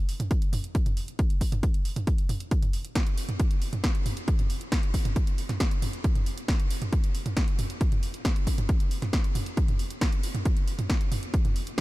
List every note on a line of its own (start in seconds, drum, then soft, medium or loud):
0.09 open hi-hat loud
0.20 closed hi-hat medium
0.20 mid tom medium
0.31 kick loud
0.31 closed hi-hat medium
0.42 closed hi-hat soft
0.53 mid tom medium
0.53 open hi-hat medium
0.64 closed hi-hat medium
0.75 kick loud
0.75 closed hi-hat medium
0.86 closed hi-hat medium
0.86 mid tom medium
0.97 open hi-hat loud
1.08 closed hi-hat medium
1.19 kick loud
1.19 closed hi-hat medium
1.30 closed hi-hat medium
1.41 kick medium
1.41 open hi-hat loud
1.52 closed hi-hat medium
1.52 mid tom medium
1.63 kick loud
1.63 closed hi-hat loud
1.74 closed hi-hat medium
1.85 open hi-hat loud
1.96 closed hi-hat medium
1.96 mid tom medium
2.07 kick loud
2.07 closed hi-hat medium
2.18 closed hi-hat medium
2.29 mid tom medium
2.29 open hi-hat loud
2.40 closed hi-hat medium
2.51 kick loud
2.51 closed hi-hat loud
2.62 closed hi-hat medium
2.62 mid tom medium
2.73 open hi-hat loud
2.85 closed hi-hat medium
2.95 kick loud
2.95 snare loud
2.95 closed hi-hat loud
3.07 closed hi-hat medium
3.17 open hi-hat loud
3.29 closed hi-hat medium
3.29 mid tom medium
3.40 kick loud
3.40 closed hi-hat loud
3.51 closed hi-hat medium
3.62 open hi-hat loud
3.73 closed hi-hat medium
3.73 mid tom medium
3.84 kick loud
3.84 snare loud
3.84 closed hi-hat loud
3.95 closed hi-hat medium
4.06 mid tom medium
4.06 open hi-hat loud
4.17 closed hi-hat medium
4.28 kick loud
4.28 closed hi-hat loud
4.39 closed hi-hat medium
4.39 mid tom medium
4.50 open hi-hat loud
4.61 closed hi-hat medium
4.72 kick loud
4.72 snare loud
4.72 closed hi-hat loud
4.83 closed hi-hat medium
4.94 kick medium
4.94 open hi-hat loud
5.05 closed hi-hat medium
5.05 mid tom medium
5.16 kick loud
5.16 closed hi-hat loud
5.27 closed hi-hat medium
5.38 open hi-hat loud
5.49 snare soft
5.49 closed hi-hat medium
5.49 mid tom medium
5.60 kick loud
5.60 snare loud
5.60 closed hi-hat loud
5.71 closed hi-hat medium
5.82 mid tom medium
5.82 open hi-hat loud
5.93 closed hi-hat medium
6.04 kick loud
6.04 closed hi-hat medium
6.15 closed hi-hat medium
6.15 mid tom medium
6.26 open hi-hat loud
6.38 closed hi-hat medium
6.48 kick loud
6.48 snare loud
6.48 closed hi-hat medium
6.60 closed hi-hat medium
6.70 open hi-hat loud
6.82 closed hi-hat medium
6.82 mid tom medium
6.93 kick loud
6.93 closed hi-hat medium
7.04 closed hi-hat medium
7.15 open hi-hat loud
7.26 closed hi-hat medium
7.26 mid tom medium
7.37 kick loud
7.37 snare loud
7.37 closed hi-hat medium
7.48 closed hi-hat medium
7.59 mid tom medium
7.59 open hi-hat loud
7.70 closed hi-hat medium
7.81 kick loud
7.81 closed hi-hat medium
7.92 closed hi-hat medium
7.92 mid tom medium
8.03 open hi-hat loud
8.14 closed hi-hat medium
8.25 kick loud
8.25 snare loud
8.25 closed hi-hat medium
8.36 closed hi-hat medium
8.47 kick medium
8.47 open hi-hat loud
8.58 closed hi-hat medium
8.58 mid tom loud
8.69 kick loud
8.69 closed hi-hat loud
8.80 closed hi-hat medium
8.91 open hi-hat loud
9.02 snare soft
9.02 closed hi-hat medium
9.02 mid tom loud
9.13 kick loud
9.13 snare loud
9.13 closed hi-hat medium
9.24 closed hi-hat medium
9.35 mid tom medium
9.35 open hi-hat loud
9.46 closed hi-hat medium
9.57 kick loud
9.57 closed hi-hat medium
9.68 closed hi-hat soft
9.68 mid tom medium
9.79 open hi-hat loud
9.90 closed hi-hat medium
10.01 kick loud
10.01 snare loud
10.01 closed hi-hat medium
10.12 closed hi-hat medium
10.23 open hi-hat loud
10.35 closed hi-hat medium
10.35 mid tom loud
10.45 kick loud
10.45 closed hi-hat medium
10.57 closed hi-hat medium
10.68 open hi-hat loud
10.79 closed hi-hat soft
10.79 mid tom loud
10.90 kick loud
10.90 snare loud
10.90 closed hi-hat medium
11.01 closed hi-hat soft
11.12 mid tom medium
11.12 open hi-hat loud
11.23 closed hi-hat soft
11.34 kick loud
11.34 closed hi-hat medium
11.45 closed hi-hat soft
11.45 mid tom medium
11.56 open hi-hat loud
11.67 closed hi-hat soft